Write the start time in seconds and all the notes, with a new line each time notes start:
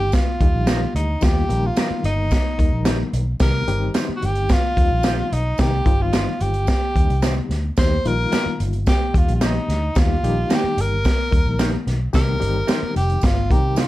Already playing: G1 D#3 G3 A#3 D#4 G4
0.12 F4, kick, snare, closed hi-hat, tambourine
0.41 D#2 D#3 G3 A#3 D#4 G4, kick, closed hi-hat
0.54 A#1
0.67 D#4 G4 A#4, snare, closed hi-hat, tambourine
0.95 D2 D#4, closed hi-hat
1.21 D#2 D#3 G3 A#3 D#4 F4 G4, kick, snare, closed hi-hat, tambourine
1.49 A#1 D#3 G3 A#3 D#4 A#4, closed hi-hat
1.66 F4
1.76 D#4 G4 A#4, snare, closed hi-hat, tambourine
1.90 muted fingered electric bass stroke
2.04 G1 D#4, closed hi-hat
2.31 kick, snare, closed hi-hat, tambourine
2.58 D#2 D#3 G3 A#3 D#4 A#4, kick, closed hi-hat
2.72 A#1
2.85 D#4 G4 A#4, snare, closed hi-hat, tambourine
3.13 B1, closed hi-hat
3.40 C2 D#3 G3 C4 D#4 G4 A#4, kick, snare, closed hi-hat, tambourine
3.68 G1 D#3 G3 C4 D#4 G4, closed hi-hat
3.94 D#4 G4 C5, snare, closed hi-hat, tambourine
4.09 muted fingered electric bass stroke
4.16 F#4
4.22 G1 G4, closed hi-hat
4.35 closed hi-hat
4.49 F4, kick, snare, closed hi-hat, tambourine
4.76 D#2 D#3 G3 C4 D#4 F4, kick, closed hi-hat
4.91 A#1
5.03 D#4 G4 C5, snare, closed hi-hat, tambourine
5.32 B1 D#4, closed hi-hat
5.58 C2 D#3 G3 C4 D#4 G4 A#4, kick, snare, closed hi-hat, tambourine
5.86 G1 D#3 G3 C4 D#4 F4, kick, closed hi-hat
6.02 F4
6.13 D#4 G4 C5, snare, closed hi-hat, tambourine
6.41 G1 G4, closed hi-hat
6.54 closed hi-hat
6.67 kick, snare, closed hi-hat, tambourine
6.95 D#2 D#3 G3 C4 C#4 G4, kick, closed hi-hat
7.02 D#4
7.09 C2, closed hi-hat
7.22 D#4 G4 C5, snare, closed hi-hat, tambourine
7.49 D2, snare, closed hi-hat
7.77 D#2 D#3 G3 A#3 D#4 G4 C5, kick, snare, closed hi-hat, tambourine
8.05 A#1 D#3 G3 A#3 D#4 F4 A#4, closed hi-hat
8.32 A#3 D#4 G4, snare, closed hi-hat, tambourine
8.46 muted fingered electric bass stroke
8.60 G1, closed hi-hat
8.73 closed hi-hat
8.86 G4, kick, snare, closed hi-hat, tambourine
9.14 D#2 D#3 G3 A#3 D#4 F4 G4, kick, closed hi-hat
9.28 A#1, closed hi-hat
9.35 F4
9.41 A#3 D#4 G4, snare, closed hi-hat, tambourine
9.69 D2, snare, closed hi-hat
9.95 D#2 D#3 G3 A#3 D#4 F4 G4, kick, snare, closed hi-hat, tambourine
10.23 A#1 D#3 G3 A#3 D#4 G4, closed hi-hat
10.50 A#3 D#4 G4, snare, closed hi-hat, tambourine
10.54 G4
10.64 muted fingered electric bass stroke
10.77 G1 A#4, closed hi-hat
11.04 kick, snare, closed hi-hat, tambourine
11.31 D#2 D#3 G3 A#3 D#4 A#4, kick, closed hi-hat
11.46 A#1
11.59 A#3 D#4 G4, snare, closed hi-hat, tambourine
11.87 B1, snare, closed hi-hat
12.13 C2 D#3 G3 C4 D#4 G4 A#4, kick, snare, closed hi-hat, tambourine
12.40 G1 D#3 G3 C4 C#4 G4, closed hi-hat
12.47 D#4
12.67 D#4 G4 C5, snare, closed hi-hat, tambourine
12.82 muted fingered electric bass stroke
12.96 F1 G4, closed hi-hat
13.10 closed hi-hat
13.21 G1 F4, kick, snare, closed hi-hat, tambourine
13.50 C3 D#3 G3 C4 D#4 G4 A#4, kick, closed hi-hat
13.76 D#4 F4 G4 C5, snare, closed hi-hat, tambourine